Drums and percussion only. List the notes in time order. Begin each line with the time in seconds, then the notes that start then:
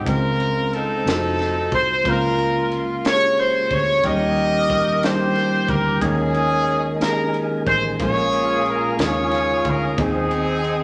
0.06 kick, ride
0.40 ride
0.73 ride
1.07 snare, ride
1.39 snare, ride
1.72 kick, ride
2.05 kick, ride
2.38 ride
2.71 ride
3.05 snare, ride
3.37 ride
3.71 kick, ride
4.04 kick, ride
4.37 ride
4.70 kick, ride
5.03 snare, ride
5.35 snare, ride
5.68 kick, ride
6.02 kick, ride
6.34 ride
6.67 ride
7.01 snare, ride
7.34 ride
7.67 kick, ride
8.00 kick, ride
8.33 ride
8.66 ride
8.99 snare, ride
9.31 snare, ride
9.65 kick, ride
9.98 kick, ride
10.31 ride
10.64 ride